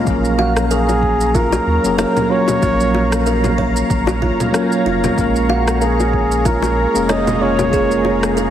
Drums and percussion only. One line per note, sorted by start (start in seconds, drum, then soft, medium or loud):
0.07 kick loud
0.07 shaker medium
0.25 shaker soft
0.39 high bongo medium
0.57 cross-stick medium
0.57 shaker medium
0.71 shaker medium
0.89 high bongo medium
0.89 shaker soft
1.03 kick medium
1.21 shaker medium
1.35 kick loud
1.35 shaker medium
1.52 high bongo loud
1.52 shaker soft
1.85 shaker medium
1.98 cross-stick medium
1.98 high bongo medium
1.98 shaker medium
2.17 low conga medium
2.17 shaker soft
2.48 high bongo medium
2.48 low conga medium
2.48 shaker medium
2.62 kick loud
2.62 shaker medium
2.80 shaker soft
2.94 high bongo medium
3.12 cross-stick medium
3.12 shaker medium
3.26 shaker medium
3.44 high bongo medium
3.44 low conga medium
3.44 shaker soft
3.58 kick medium
3.76 shaker medium
3.90 kick loud
3.90 shaker medium
4.07 high bongo loud
4.07 shaker soft
4.22 kick medium
4.40 low conga medium
4.40 shaker medium
4.54 cross-stick medium
4.54 high bongo medium
4.54 shaker medium
4.72 shaker soft
5.04 high bongo medium
5.04 low conga medium
5.04 shaker medium
5.18 kick loud
5.18 shaker medium
5.36 shaker soft
5.49 high bongo medium
5.68 cross-stick medium
5.68 shaker medium
5.82 shaker medium
6.00 high bongo medium
6.00 shaker soft
6.13 kick medium
6.32 shaker medium
6.45 kick loud
6.45 shaker medium
6.62 high bongo medium
6.62 shaker soft
6.96 shaker medium
7.09 cross-stick medium
7.09 high bongo medium
7.09 shaker medium
7.27 low conga medium
7.27 shaker soft
7.59 high bongo loud
7.59 low conga medium
7.59 shaker medium
7.73 kick loud
7.73 shaker medium
7.91 shaker soft
8.05 high bongo medium
8.23 cross-stick medium
8.23 shaker medium
8.37 shaker medium